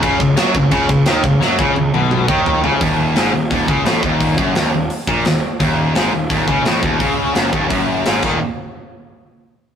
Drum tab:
CC |x-x-x-x-|--------|--------|--------|
HH |--------|--------|o-o-o-o-|o-o-o-o-|
SD |--o---o-|o-------|--o---o-|--o---o-|
T1 |--------|--oo----|--------|--------|
T2 |--------|----o---|--------|--------|
FT |--------|------oo|--------|--------|
BD |oo-ooo-o|-o---o--|o---oo-o|oo---o--|

CC |--------|-------x|--------|
HH |o-o-o-o-|o-o-o-o-|--------|
SD |--o---o-|--o---o-|--------|
T1 |--------|--------|--------|
T2 |--------|--------|--------|
FT |--------|--------|--------|
BD |o---oo-o|o--oo--o|--------|